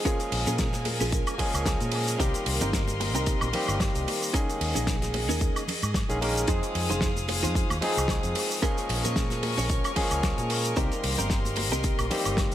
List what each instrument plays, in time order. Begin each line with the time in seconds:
0.04 tine electric piano F3 G#3 A#3 C#4 G#4, clean electric guitar C#4 F4 G#4 A#4, string section A#4 G#5, kick, closed hi-hat, shaker
0.20 closed hi-hat, shaker
0.32 fingered electric bass A#1, muted clean electric guitar stroke, open hi-hat, ride
0.47 fingered electric bass A#2, clean electric guitar C#4 F4 G#4 A#4, closed hi-hat, low conga, shaker
0.58 kick, snare, closed hi-hat, shaker
0.72 snare, closed hi-hat, muted conga, shaker
0.85 muted clean electric guitar stroke, open hi-hat, ride, high conga
1.00 fingered electric bass A#1, clean electric guitar C#4 F4 G#4 A#4, open hi-hat, muted conga, shaker
1.12 kick, closed hi-hat, shaker
1.27 closed hi-hat, high woodblock, shaker
1.38 tine electric piano F3 G#3 A#3 C#4 G#4, kick, open hi-hat, ride, low conga
1.54 fingered electric bass C#2, closed hi-hat, high woodblock, shaker
1.66 muted clean electric guitar stroke, kick, snare, closed hi-hat, shaker
1.80 fingered electric bass A#2, muted clean electric guitar stroke, closed hi-hat, high conga, shaker
1.92 muted clean electric guitar stroke, open hi-hat, ride
2.08 closed hi-hat, shaker
2.18 fingered electric bass C2, tine electric piano D#3 G3 A#3 C4 G4, clean electric guitar C4 D#4 G4 A#4, string section D#5 C6, kick, closed hi-hat, shaker
2.34 closed hi-hat, shaker
2.46 fingered electric bass C2, muted clean electric guitar stroke, open hi-hat, ride
2.61 fingered electric bass G1, clean electric guitar C4 D#4 G4 A#4, closed hi-hat, low conga, shaker
2.73 kick, snare, closed hi-hat, shaker
2.88 closed hi-hat, muted conga, shaker
3.00 muted clean electric guitar stroke, open hi-hat, ride, high conga
3.14 fingered electric bass C2, clean electric guitar C4 D#4 G4 A#4, closed hi-hat, muted conga, shaker
3.26 kick, closed hi-hat, shaker
3.41 fingered electric bass A#1, closed hi-hat, high conga, high woodblock, shaker
3.53 tine electric piano D#3 G3 A#3 C4 G4, open hi-hat, ride, muted conga, low conga
3.68 fingered electric bass G1, closed hi-hat, high woodblock, shaker
3.80 muted clean electric guitar stroke, kick, snare, closed hi-hat, high conga, shaker
3.95 fingered electric bass C2, muted clean electric guitar stroke, closed hi-hat, shaker
4.07 muted clean electric guitar stroke, open hi-hat, ride, high conga
4.23 shaker
4.33 tine electric piano D#3 G#3 A#3 C#4 G#4, clean electric guitar C#4 D#4 G#4 A#4, string section G#4 D#5, kick, closed hi-hat, shaker
4.49 closed hi-hat, shaker
4.61 fingered electric bass D#2, muted clean electric guitar stroke, open hi-hat, ride
4.75 fingered electric bass A#1, clean electric guitar C#4 D#4 G#4 A#4, closed hi-hat, low conga, shaker
4.87 kick, snare, closed hi-hat, shaker
5.02 snare, closed hi-hat, muted conga, shaker
5.14 muted clean electric guitar stroke, open hi-hat, ride, high conga
5.29 fingered electric bass D#2, clean electric guitar C#4 D#4 G#4 A#4, open hi-hat, muted conga, shaker
5.41 kick, closed hi-hat, shaker
5.56 closed hi-hat, high woodblock, shaker
5.68 open hi-hat, ride, low conga
5.82 fingered electric bass G#2, closed hi-hat, high woodblock, shaker
5.94 muted clean electric guitar stroke, kick, snare, closed hi-hat, shaker
6.09 fingered electric bass A#1, tine electric piano D#3 G#3 A#3 C#4 G#4, muted clean electric guitar stroke, closed hi-hat, high conga, shaker
6.21 tine electric piano D#3 G#3 A#3 C#4 A#4, muted clean electric guitar stroke, open hi-hat, ride, high conga
6.36 closed hi-hat, shaker
6.47 fingered electric bass F2, tine electric piano F3 G#3 C4 D#4 G#4, clean electric guitar D#4 F4 G#4 C5, string section F5 D#6, kick, closed hi-hat, shaker
6.63 closed hi-hat, shaker
6.75 fingered electric bass F2, muted clean electric guitar stroke, open hi-hat, ride
6.90 fingered electric bass F1, clean electric guitar D#4 F4 G#4 C5, closed hi-hat, low conga, shaker
7.01 kick, snare, closed hi-hat, shaker
7.17 closed hi-hat, muted conga, shaker
7.28 muted clean electric guitar stroke, open hi-hat, ride, high conga
7.43 fingered electric bass F2, clean electric guitar D#4 F4 G#4 C5, closed hi-hat, muted conga, shaker
7.55 kick, closed hi-hat, shaker
7.70 fingered electric bass D#2, closed hi-hat, high conga, high woodblock, shaker
7.81 tine electric piano F3 G#3 C4 D#4 G#4, open hi-hat, ride, muted conga, low conga
7.97 fingered electric bass C2, closed hi-hat, high woodblock, shaker
8.08 muted clean electric guitar stroke, kick, snare, closed hi-hat, high conga, shaker
8.23 fingered electric bass F2, muted clean electric guitar stroke, closed hi-hat, shaker
8.35 muted clean electric guitar stroke, open hi-hat, ride, high conga
8.51 shaker
8.62 tine electric piano F3 G#3 A#3 C#4 G#4, clean electric guitar C#4 F4 G#4 A#4, string section A#4 G#5 C#6, kick, closed hi-hat, shaker
8.78 closed hi-hat, shaker
8.89 fingered electric bass A#1, muted clean electric guitar stroke, open hi-hat, ride
9.04 fingered electric bass A#2, clean electric guitar C#4 F4 G#4 A#4, closed hi-hat, low conga, shaker
9.16 kick, snare, closed hi-hat, shaker
9.30 snare, closed hi-hat, muted conga, shaker
9.43 muted clean electric guitar stroke, open hi-hat, ride, high conga
9.57 fingered electric bass A#1, clean electric guitar C#4 F4 G#4 C#5, open hi-hat, muted conga, shaker
9.70 kick, closed hi-hat, shaker
9.84 closed hi-hat, high woodblock, shaker
9.95 tine electric piano F3 G#3 A#3 C#4 G#4, kick, open hi-hat, ride, low conga
10.11 fingered electric bass C#2, closed hi-hat, high woodblock, shaker
10.23 muted clean electric guitar stroke, kick, snare, closed hi-hat, shaker
10.38 fingered electric bass A#2, muted clean electric guitar stroke, closed hi-hat, high conga, shaker
10.50 muted clean electric guitar stroke, open hi-hat, ride
10.64 closed hi-hat, shaker
10.76 fingered electric bass C2, tine electric piano D#3 G3 A#3 C4 G4, clean electric guitar C4 D#4 G4 A#4, string section D#5 C6, kick, closed hi-hat, shaker
10.92 closed hi-hat, shaker
11.04 fingered electric bass C2, muted clean electric guitar stroke, open hi-hat, ride
11.18 fingered electric bass G1, clean electric guitar C4 D#4 G4 A#4, closed hi-hat, low conga, shaker
11.30 kick, snare, closed hi-hat, shaker
11.45 closed hi-hat, muted conga, shaker
11.56 muted clean electric guitar stroke, open hi-hat, ride, high conga
11.71 fingered electric bass C2, clean electric guitar C4 D#4 G4 A#4, closed hi-hat, muted conga, shaker
11.84 kick, closed hi-hat, shaker
11.99 fingered electric bass A#1, closed hi-hat, high conga, high woodblock, shaker
12.10 tine electric piano D#3 G3 A#3 C4 G4, open hi-hat, ride, muted conga, low conga
12.25 fingered electric bass G1, closed hi-hat, high woodblock, shaker
12.37 muted clean electric guitar stroke, kick, snare, closed hi-hat, high conga, shaker
12.52 shaker